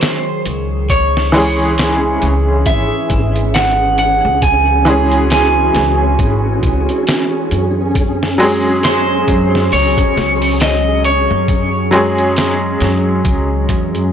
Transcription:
Already playing: D#3 F#3 G#3 C#4 G#4 C5
0.01 snare, closed hi-hat
0.46 C#2, closed hi-hat
0.89 E3 C#4 G#4 C#5, kick, closed hi-hat
1.17 snare
1.32 E3 G#3 C#4, open hi-hat
1.37 G#4
1.78 snare, closed hi-hat
2.22 C#2, closed hi-hat
2.66 G#1 E5, kick, closed hi-hat
3.10 G#1, kick, closed hi-hat
3.36 closed hi-hat
3.54 F#5, snare, closed hi-hat
3.98 F#5, closed hi-hat
4.25 C#2
4.42 F#4 G#5, kick, closed hi-hat
4.85 E3 G#3 C#4, closed hi-hat
4.90 G#4
5.12 closed hi-hat
5.30 G#5, snare, closed hi-hat
5.75 C#2, snare, closed hi-hat
6.19 G#1, kick, closed hi-hat
6.63 C#2, kick, closed hi-hat
6.89 closed hi-hat
7.07 snare, closed hi-hat
7.51 F#2, closed hi-hat
7.95 F#3 G#4, kick, closed hi-hat
8.23 snare
8.38 F#3 G#3 C#4, open hi-hat
8.43 G#4
8.83 C5, snare, closed hi-hat
9.28 F#2, kick, closed hi-hat
9.55 snare
9.72 C#2 C#5, open hi-hat
9.97 kick, closed hi-hat
10.17 C#2, snare
10.42 open hi-hat
10.60 D#5, snare, closed hi-hat
11.04 C#5, closed hi-hat
11.30 F#2
11.48 kick, closed hi-hat
11.91 F#3 G#3 C#4, closed hi-hat
11.96 G#4
12.18 closed hi-hat
12.36 snare, closed hi-hat
12.80 F#2, snare, closed hi-hat
13.25 C#2, kick, closed hi-hat
13.69 E2, kick, closed hi-hat
13.95 F#2, closed hi-hat

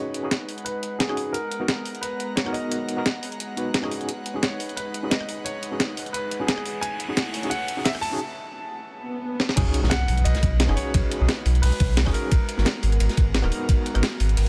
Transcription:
Already playing: G#3 C#4 D#4 F#4 G#4 B4 C#5 F#5
0.14 closed hi-hat
0.23 C#4 D#4 F#4 G#4
0.31 snare, closed hi-hat
0.49 open hi-hat
0.58 closed hi-hat
0.65 B4, closed hi-hat
0.83 closed hi-hat
0.99 G#4, snare, closed hi-hat
1.08 C#4 D#4 F#4 G#4, cross-stick
1.17 open hi-hat
1.33 B3 A#4 A#5, closed hi-hat
1.51 closed hi-hat
1.60 B3 D#4 F#4 A#4
1.68 snare, closed hi-hat
1.85 open hi-hat
1.95 closed hi-hat
2.01 B4, closed hi-hat
2.20 closed hi-hat
2.36 C#5, snare, closed hi-hat
2.45 B3 D#4 F#4 A#4, cross-stick
2.53 D#5, open hi-hat
2.72 closed hi-hat
2.89 closed hi-hat
2.97 B3 D#4 F#4 A#4
3.06 snare, closed hi-hat
3.23 open hi-hat
3.32 closed hi-hat
3.40 closed hi-hat
3.56 B3 D#4 F#4 B4, closed hi-hat
3.74 snare, closed hi-hat
3.82 C#4 D#4 F#4 G#4, cross-stick
3.91 D#4 B4, open hi-hat
4.01 closed hi-hat
4.09 closed hi-hat, riser
4.26 closed hi-hat
4.34 C#4 D#4 F#4 G#4
4.42 C#5, snare, closed hi-hat
4.60 open hi-hat
4.69 closed hi-hat
4.76 B4, closed hi-hat
4.94 closed hi-hat
5.03 C#4 D#4 F#4 G#4
5.10 D#5, snare, closed hi-hat
5.21 cross-stick
5.29 open hi-hat
5.44 C#5, closed hi-hat
5.63 closed hi-hat
5.71 C#4 D#4 F#4 G#4
5.80 snare, closed hi-hat
5.97 open hi-hat
6.06 closed hi-hat
6.13 B4, closed hi-hat
6.31 closed hi-hat
6.40 C#4 D#4 F#4 G#4
6.47 G#4, snare, closed hi-hat
6.58 cross-stick
6.66 open hi-hat
6.81 A3 E4 C#5 F#5 G#5, closed hi-hat
7.00 closed hi-hat
7.08 C#4 D#4 F#4 G#4
7.17 snare, closed hi-hat
7.34 open hi-hat
7.43 C#4 D#4 F#4 G#4, closed hi-hat
7.50 F#5, closed hi-hat
7.68 closed hi-hat
7.77 C#4 D#4 F#4 G#4
7.84 E5, snare, closed hi-hat
7.95 cross-stick
8.01 A5, open hi-hat
8.11 C#4 D#4 F#4 G#4
8.89 swell
9.40 snare
9.49 snare
9.56 B1 G#3 C#4 D#4 F#4 G#4 B4, kick, closed hi-hat, crash, ride, impact
9.74 closed hi-hat, ride
9.83 B1 C#4 D#4 F#4 G#4, snare
9.90 F#5, snare, closed hi-hat, ride
10.08 B1, open hi-hat, ride
10.17 closed hi-hat
10.24 B1 D#5, closed hi-hat, ride
10.35 snare, closed hi-hat
10.43 B1, kick, closed hi-hat, ride
10.60 snare, closed hi-hat, ride
10.67 F#1 C#4 D#4 F#4 G#4, cross-stick, ride
10.76 C#5, open hi-hat, ride
10.94 B1, kick, closed hi-hat, ride
11.11 closed hi-hat, ride
11.20 B1 C#4 D#4 F#4 G#4
11.28 snare, closed hi-hat, ride
11.45 B1, open hi-hat, ride
11.55 closed hi-hat
11.62 B1 B4, closed hi-hat, open hi-hat
11.72 closed hi-hat
11.80 B1, kick, closed hi-hat, ride
11.97 snare, closed hi-hat, ride
12.06 F#1 C#4 D#4 F#4 G#4, kick, cross-stick, snare
12.13 A#4, open hi-hat, ride
12.31 G#1 B3 F#4 A#4, kick, closed hi-hat, ride
12.49 closed hi-hat, ride
12.57 G#1 B3 D#4 F#4 A#4, snare
12.65 snare, closed hi-hat, ride
12.83 G#1, open hi-hat, ride
12.92 closed hi-hat
13.00 G#1, closed hi-hat, ride
13.09 snare, closed hi-hat
13.17 G#1, kick, closed hi-hat, ride
13.34 snare, closed hi-hat, ride
13.42 D#1 B3 D#4 F#4 A#4, cross-stick, ride
13.52 open hi-hat, ride
13.69 G#1, kick, closed hi-hat, ride
13.86 closed hi-hat, ride
13.94 G#1 B3 D#4 F#4 A#4, cross-stick, closed hi-hat
14.03 snare, closed hi-hat, ride
14.20 G#1, open hi-hat, ride
14.29 closed hi-hat
14.37 G#1, closed hi-hat, open hi-hat

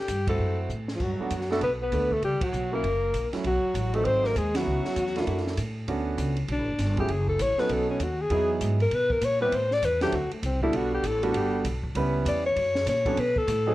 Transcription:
0.00 G4
0.08 G2, kick, hi-hat pedal, ride
0.27 A3 C4 E4 F#4 A4, kick, ride
0.39 F#2
0.69 A2, hi-hat pedal
0.88 snare
0.95 F3 F4
1.00 G2 F#3 F#4, kick, crash
1.19 A3 B3 D4 F#4, muted upright bass stroke
1.31 F#2, kick, hi-hat pedal, ride
1.41 snare
1.50 A3 B3 D4 F#4 A4, snare
1.61 B1 B3 B4, kick, ride
1.82 B3 B4
1.92 D2 A3 B3 D4 A4, kick, hi-hat pedal, ride
2.11 A3 A4, kick
2.22 C#2 G3 G4, kick, ride
2.41 F#3 F#4, kick, ride
2.53 B1, hi-hat pedal
2.72 F#3 A#3 C#4 E4 A#4
2.83 F#1, kick, ride
3.13 A#1, kick, hi-hat pedal, ride
3.32 F#3 A3 C#4 E4, muted upright bass stroke, snare, ride
3.44 B1 F#3 F#4, kick, ride
3.74 A1, kick, hi-hat pedal, ride
3.93 F#3 A3 C4 D#4 A4, ride
4.04 G#1 C4 C5, kick, ride
4.24 A#3 A#4, snare
4.35 D#2 G#3 G#4, kick, hi-hat pedal, ride
4.54 F#3 B3 C#4 E4 F#4, snare, ride
4.66 C#2
4.85 snare
4.96 E2, kick, hi-hat pedal, ride
5.07 snare
5.16 A3 A#3 D4 E4, snare, ride
5.27 F#2, kick, ride
5.37 snare
5.47 snare
5.57 A2, kick, hi-hat pedal, ride
5.87 D2 A3 B3 C#4 D4 F#4, kick, ride
6.18 C#2, kick, hi-hat pedal, ride
6.37 ride
6.48 B1 D4, kick, ride
6.58 A1
6.68 F#1
6.78 G1, kick, snare, hi-hat pedal, ride
6.97 F#3 A3 C#4 E4 G4 G#4, kick, ride
7.09 F#1 G#4, kick, ride
7.28 A4, kick
7.39 A1 C#5, kick, hi-hat pedal, ride
7.58 F#3 B3 C#4 D#4 A4 B4, muted upright bass stroke, snare
7.69 B1 A4, kick, ride
7.90 C#4
7.99 D#2, kick, hi-hat pedal, ride
8.04 F#4
8.22 G#4
8.30 E2 F#3 B3 D#4 E4 G#4, kick, ride
8.61 G#2, kick, hi-hat pedal, ride
8.80 A#4, ride
8.91 B2 B4, kick, ride
9.10 A#4, kick
9.21 A#2 C#5, kick, hi-hat pedal, ride
9.40 G3 B3 C4 E4 G4 B4
9.51 A2 C5, kick, ride
9.71 D5, snare
9.82 E2 B4, kick, hi-hat pedal, ride
10.01 F#3 C4 D4 E4 G4 A4, snare, ride
10.12 D2 F#4, kick, ride
10.31 A3, muted upright bass stroke, ride
10.43 C2 C4, kick, hi-hat pedal, ride
10.62 G3 B3 D4 E4 F#4 A4, kick
10.73 B1 F#4, kick, ride
10.94 G4
11.03 A1 A4, kick, hi-hat pedal, ride
11.23 G3 B3 D4 F#4 A4, ride
11.34 G1 G4, kick, ride
11.64 B1, kick, hi-hat pedal, ride
11.83 kick
11.95 C#2 G3 B3 C#4 E4 B4, kick, ride
12.25 E2 D5, kick, hi-hat pedal, ride
12.46 C#5
12.56 F#2, kick, ride
12.75 snare
12.86 A#2 C#5, kick, snare, hi-hat pedal, ride
13.06 F#3 B3 C#4 D4 A4, kick, ride
13.17 B2 B4, kick, ride
13.36 A4, kick
13.47 A2, kick, hi-hat pedal, ride
13.66 F#3 A3 C4 D#4 G#4

